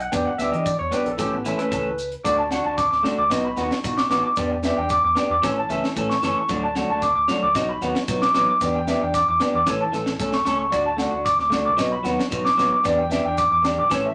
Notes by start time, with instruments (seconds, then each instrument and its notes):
0.00 clean electric guitar F#5, closed hi-hat
0.12 fingered electric bass E2, clean electric guitar B3 D4 G4 G5, kick, closed hi-hat, maracas
0.26 clean electric guitar F#5
0.38 fingered electric bass D2, clean electric guitar B3 D4 G4 E5, cross-stick, closed hi-hat, maracas
0.52 fingered electric bass E3, clean electric guitar D4 G4 D#5, closed hi-hat
0.66 clean electric guitar D5, kick, closed hi-hat, maracas
0.79 fingered electric bass E2, clean electric guitar C#5
0.91 clean electric guitar B3 D4 G4 B4, cross-stick, closed hi-hat, maracas
1.05 fingered electric bass A#1, clean electric guitar A4, closed hi-hat
1.17 fingered electric bass A1, clean electric guitar E3 A3 C#4 G4 A4, kick, cross-stick, closed hi-hat, maracas
1.32 fingered electric bass A1, clean electric guitar B3
1.45 clean electric guitar E3 A3 C#4 E4 A4, closed hi-hat, maracas
1.58 clean electric guitar A3 C#4 A4 B4, cross-stick, closed hi-hat
1.71 fingered electric bass C#2, clean electric guitar E3 A3 C#4 A4, kick, closed hi-hat, maracas
1.98 closed hi-hat, maracas
2.12 closed hi-hat
2.24 fingered electric bass D2, clean electric guitar A3 D4 F#4 D5, kick, maracas
2.38 clean electric guitar A5
2.51 clean electric guitar D4 F#4 F#5, snare, maracas
2.64 fingered electric bass D2, clean electric guitar D4 F#4 A5
2.77 clean electric guitar D6, kick, snare, maracas
2.91 fingered electric bass D2, clean electric guitar D6, snare
3.03 clean electric guitar A3 D4 F#4, snare
3.18 fingered electric bass D2, clean electric guitar D6
3.30 fingered electric bass B1, clean electric guitar B3 D#4 F#4 D#5, kick, snare, maracas
3.45 clean electric guitar B5
3.56 fingered electric bass D#2, clean electric guitar B3 D#4 F#4 F#5, snare, maracas
3.71 snare
3.84 fingered electric bass B2, clean electric guitar D#4 F#4, muted clean electric guitar stroke, kick, maracas
3.98 clean electric guitar D6, snare
4.10 fingered electric bass A1, clean electric guitar B3 D#4 F#4 D6, snare, maracas
4.25 clean electric guitar D6
4.36 fingered electric bass E2, clean electric guitar B3 D4 G4 D5, kick, snare, maracas
4.51 muted clean electric guitar stroke
4.63 clean electric guitar B3 D4 G4 E5, snare, maracas
4.76 fingered electric bass E2, clean electric guitar D4 G4 G5
4.90 clean electric guitar D6, kick, maracas
5.04 fingered electric bass E2, clean electric guitar D6
5.15 clean electric guitar B3 D4 G4, snare, maracas
5.30 fingered electric bass E2, clean electric guitar D6
5.42 fingered electric bass A1, clean electric guitar E3 A3 C#4 A4 C#5, kick, snare, maracas
5.58 clean electric guitar A5
5.69 fingered electric bass C#2, clean electric guitar E3 A3 C#4 A4 E5, maracas
5.84 snare
5.96 fingered electric bass A2, clean electric guitar E3 A3 C#4 A4, kick, maracas
6.10 clean electric guitar C#6, snare
6.22 fingered electric bass F#1, clean electric guitar E3 A3 C#4 A4 C#6, snare, maracas
6.37 clean electric guitar C#6
6.49 fingered electric bass D2, clean electric guitar F#3 A3 D4 F#4 D5, kick, snare, maracas
6.63 clean electric guitar A5
6.75 clean electric guitar F#3 A3 D4 F#4 F#5, snare, maracas
6.89 fingered electric bass D2, clean electric guitar A3 D4 F#4 A5
7.02 clean electric guitar D6, kick, snare, maracas
7.15 fingered electric bass D2, clean electric guitar D6
7.28 clean electric guitar F#3 A3 D4 F#4, snare, maracas
7.43 fingered electric bass D2, clean electric guitar D6
7.55 fingered electric bass B1, clean electric guitar F#3 D#4 F#4 D#5, muted clean electric guitar stroke, kick, snare, maracas
7.69 clean electric guitar B5
7.81 fingered electric bass D#2, clean electric guitar F#3 B3 D#4 F#4 F#5, snare, maracas
7.95 snare
8.08 fingered electric bass B2, clean electric guitar F#3 B3 D#4 F#4, kick, maracas
8.22 clean electric guitar D6, snare
8.34 fingered electric bass A1, clean electric guitar F#3 B3 D#4 D6, muted clean electric guitar stroke, snare, maracas
8.49 clean electric guitar D6
8.61 fingered electric bass E2, clean electric guitar B3 D4 G4, muted clean electric guitar stroke, kick, snare, maracas
8.75 clean electric guitar G5
8.87 clean electric guitar B3 D4 G4 E5, snare, maracas
9.01 fingered electric bass E2, clean electric guitar D4 G5
9.14 clean electric guitar D6, kick, snare, maracas
9.28 fingered electric bass E2, clean electric guitar D6
9.40 clean electric guitar B3 D4 G4, snare, maracas
9.54 fingered electric bass E2, clean electric guitar D6
9.66 fingered electric bass A1, clean electric guitar E3 A3 A4 C#5, muted clean electric guitar stroke, kick, snare, maracas
9.81 clean electric guitar A5
9.92 fingered electric bass A1, clean electric guitar E3 A3 A4, muted clean electric guitar stroke, snare, maracas
10.06 snare
10.20 fingered electric bass B1, clean electric guitar A3 C#4 A4, kick, maracas
10.32 clean electric guitar C#6, snare
10.45 fingered electric bass C#2, clean electric guitar A3 C#4 A4 C#6, muted clean electric guitar stroke, snare, maracas
10.59 clean electric guitar C#6
10.71 fingered electric bass D2, clean electric guitar D4 F#4 D5, muted clean electric guitar stroke, kick, snare, maracas
10.86 clean electric guitar A5
10.97 clean electric guitar A3 D4 F#4 F#5, snare, maracas
11.11 fingered electric bass D2, clean electric guitar D4 F#4
11.25 clean electric guitar D6, kick, snare, maracas
11.39 fingered electric bass D2, clean electric guitar D6, snare
11.50 clean electric guitar A3 D4 F#4, snare, maracas
11.65 fingered electric bass C#2, clean electric guitar D6
11.77 fingered electric bass B1, clean electric guitar F#3 B3 F#4 D#5, muted clean electric guitar stroke, kick, snare, maracas
11.92 clean electric guitar B5
12.03 fingered electric bass D#2, clean electric guitar F#3 B3 D#4 F#4 F#5, snare, maracas
12.19 snare
12.31 fingered electric bass B2, clean electric guitar F#3 B3 D#4 F#4, kick, maracas
12.45 clean electric guitar D6, snare
12.57 fingered electric bass A1, clean electric guitar F#3 B3 D#4 F#4 D6, snare, maracas
12.72 clean electric guitar D6
12.84 fingered electric bass E2, clean electric guitar B3 D4 G4 D5, kick, snare, maracas
12.98 clean electric guitar G5
13.10 clean electric guitar B3 D4 G4 E5, snare, maracas
13.24 fingered electric bass E2, clean electric guitar D4 G4 G5
13.38 clean electric guitar D6, kick, maracas
13.51 fingered electric bass E2, clean electric guitar D6
13.63 clean electric guitar D4 G4, muted clean electric guitar stroke, snare, maracas
13.77 fingered electric bass B1, clean electric guitar D6
13.90 fingered electric bass A1, clean electric guitar E3 A3 C#4 A4 C#5, kick, snare, maracas
14.06 clean electric guitar E5